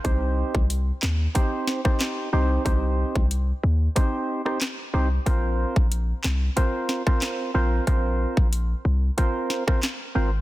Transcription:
<<
  \new Staff \with { instrumentName = "Synth stab" } { \time 4/4 \key c \minor \tempo 4 = 92 <c' ees' g' c''>4 r4 <c' ees' g' c''>8. <c' ees' g' c''>8. <c' ees' g' c''>8 | <c' ees' g' c''>4 r4 <c' ees' g' c''>8. <c' ees' g' c''>16 r8 <c' ees' g' c''>16 r16 | <c' f' bes' c''>4 r4 <c' f' bes' c''>8. <c' f' bes' c''>8. <c' f' bes' c''>8 | <c' f' bes' c''>4 r4 <c' f' bes' c''>8. <c' f' bes' c''>16 r8 <c' f' bes' c''>16 r16 | }
  \new Staff \with { instrumentName = "808-style bass" } { \clef bass \time 4/4 \key c \minor c,8. c,8. ees,8 r4. c,8 | c,8. c,8. ees,8 r4. c,8 | bes,,8. bes,,8. c,8 r4. bes,,8 | bes,,8. bes,,8. c,8 r4. aes,,8 | }
  \new DrumStaff \with { instrumentName = "Drums" } \drummode { \time 4/4 <hh bd>8. bd16 hh8 <hc sn>8 <hh bd>8 sn16 <bd ss>16 <hc hh sn>4 | <hh bd>8. bd16 hh4 <hh bd>8. ss16 <hc hh sn>4 | <hh bd>8. bd16 hh8 <hc sn>8 <hh bd>8 sn16 <bd ss>16 <hc hh sn>4 | <hh bd>8. bd16 hh4 <hh bd>8 sn16 <bd ss>16 <hc hh sn>4 | }
>>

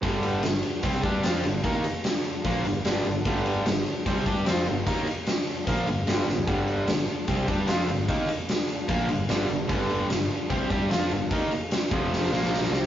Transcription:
<<
  \new Staff \with { instrumentName = "Overdriven electric guitar" } { \clef bass \time 4/4 \key g \minor \tempo 4 = 149 <g, d g>4 <g, d>8 r8 <c g c'>8 <g d' g'>8 <f c' f'>8 <g, d>8 | <ees bes ees'>8 r4. <bes, f bes>8 <g, d>8 <g, d g>8 <g, d>8 | <g, d g>4 <g, d>8 r8 <c g c'>8 <g d' g'>8 <f c' f'>8 <g, d>8 | <ees bes ees'>8 r4. <bes, f bes>8 <g, d>8 <g, d g>8 <g, d>8 |
<g, d g>4 <g, d>8 r8 <c g c'>8 <g d' g'>8 <f c' f'>8 <g, d>8 | <ees bes ees'>8 r4. <bes, f bes>8 <g, d>8 <g, d g>8 <g, d>8 | <g, d g>4 <g, d>8 r8 <c g c'>8 <g d' g'>8 <f c' f'>8 <g, d>8 | <ees bes ees'>8 r4 <f, c f>4 <bes, f bes>4 <c g c'>8 | }
  \new Staff \with { instrumentName = "Fingered electric bass" } { \clef bass \time 4/4 \key g \minor g,,4 g,,8 r8 c,8 g,8 f,8 g,,8 | ees,8 r4. bes,,8 g,,8 g,,8 g,,8 | g,,4 g,,8 r8 c,8 g,8 f,8 g,,8 | ees,8 r4. bes,,8 g,,8 g,,8 g,,8 |
g,,4 g,,8 r8 c,8 g,8 f,8 g,,8 | ees,8 r4. bes,,8 g,,8 g,,8 g,,8 | g,,4 g,,8 r8 c,8 g,8 f,8 g,,8 | ees,8 r4 f,,4 bes,,4 c,8 | }
  \new DrumStaff \with { instrumentName = "Drums" } \drummode { \time 4/4 <bd cymr>8 cymr8 <cymr sn>8 cymr8 <bd cymr>8 <bd cymr>8 <cymr sn>8 cymr8 | <bd cymr>8 cymr8 <cymr sn>8 cymr8 <bd cymr>8 cymr8 <cymr sn>8 cymr8 | <bd cymr>8 cymr8 <cymr sn>8 cymr8 <bd cymr>8 <bd cymr>8 <cymr sn>8 cymr8 | <bd cymr>8 cymr8 <cymr sn>8 cymr8 <bd cymr>8 cymr8 <cymr sn>8 sn16 tomfh16 |
<bd cymr>8 cymr8 <cymr sn>8 cymr8 <bd cymr>8 <bd cymr>8 <cymr sn>8 cymr8 | <bd cymr>8 cymr8 <cymr sn>8 cymr8 <bd cymr>8 cymr8 <cymr sn>8 cymr8 | <bd cymr>8 cymr8 <cymr sn>8 cymr8 <bd cymr>8 <bd cymr>8 <cymr sn>8 cymr8 | <bd cymr>8 cymr8 <cymr sn>8 <bd cymr>8 sn16 sn16 sn16 sn16 sn16 sn16 sn16 sn16 | }
>>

